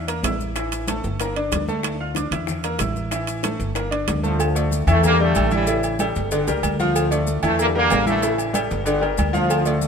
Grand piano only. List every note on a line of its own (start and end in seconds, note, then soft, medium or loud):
0.08 0.21 A#3 medium
0.08 0.21 A#4 medium
0.08 0.22 A#5 medium
0.25 0.51 E4 medium
0.25 0.51 E5 medium
0.25 0.51 E6 medium
0.56 0.83 E3 medium
0.56 0.83 E4 medium
0.56 0.83 E5 medium
0.89 1.15 A3 medium
0.89 1.15 A4 medium
0.89 1.15 A5 medium
1.20 1.33 A#3 medium
1.20 1.34 A#4 medium
1.20 1.34 A#5 medium
1.36 1.62 D4 medium
1.36 1.63 D5 medium
1.36 1.63 D6 medium
1.68 1.95 A3 medium
1.68 1.95 A4 medium
1.68 1.95 A5 medium
2.00 2.14 F4 medium
2.00 2.14 F5 medium
2.00 2.14 F6 medium
2.17 2.30 D4 medium
2.17 2.30 D5 medium
2.17 2.30 D6 medium
2.32 2.59 E4 medium
2.32 2.59 E5 medium
2.32 2.59 E6 medium
2.64 2.77 A#3 medium
2.64 2.78 A#4 medium
2.64 2.78 A#5 medium
2.80 3.07 E4 medium
2.80 3.07 E5 medium
2.80 3.07 E6 medium
3.12 3.39 E3 medium
3.12 3.38 E4 medium
3.12 3.39 E5 medium
3.44 3.70 A3 medium
3.44 3.70 A4 medium
3.44 3.71 A5 medium
3.76 3.89 A#3 medium
3.76 3.89 A#4 medium
3.76 3.89 A#5 medium
3.91 4.18 D4 medium
3.91 4.18 D5 medium
3.91 4.18 D6 medium
4.23 4.37 A3 medium
4.23 4.37 A4 medium
4.23 4.37 A5 medium
4.55 4.82 A3 medium
4.55 4.82 A4 medium
4.55 4.82 D5 medium
4.87 5.14 E3 medium
4.87 5.14 E4 medium
4.87 5.14 E5 medium
5.20 5.46 G3 medium
5.20 5.46 G4 medium
5.20 5.46 D5 medium
5.51 5.64 E3 loud
5.51 5.65 E4 loud
5.51 5.65 E5 medium
5.68 5.94 E3 medium
5.68 5.94 E4 medium
5.68 5.94 E5 medium
5.99 6.26 G3 medium
5.99 6.26 G4 medium
5.99 6.26 A4 medium
6.32 6.45 D3 medium
6.32 6.45 D4 medium
6.32 6.45 D5 medium
6.47 6.74 G3 medium
6.47 6.74 G4 medium
6.47 6.74 A#4 medium
6.80 7.06 F3 loud
6.80 7.06 F4 loud
6.80 7.06 F5 medium
7.11 7.37 A3 medium
7.11 7.37 A4 medium
7.11 7.38 D5 medium
7.43 7.69 E3 medium
7.43 7.69 E4 medium
7.43 7.69 E5 loud
7.75 8.01 G3 medium
7.75 8.01 G4 medium
7.75 8.01 A#4 medium
8.06 8.20 E3 loud
8.06 8.20 E4 loud
8.06 8.20 E5 loud
8.22 8.49 E3 medium
8.22 8.49 E4 medium
8.22 8.49 E5 medium
8.53 8.80 G3 medium
8.53 8.80 G4 medium
8.53 8.80 A4 medium
8.86 8.99 D3 medium
8.86 8.99 D4 medium
8.86 8.99 D5 medium
9.01 9.28 G3 medium
9.01 9.28 G4 medium
9.01 9.28 A#4 medium
9.33 9.60 F3 loud
9.33 9.60 F4 loud
9.33 9.60 F5 loud
9.65 9.88 A3 medium
9.65 9.88 A4 medium
9.65 9.88 D5 medium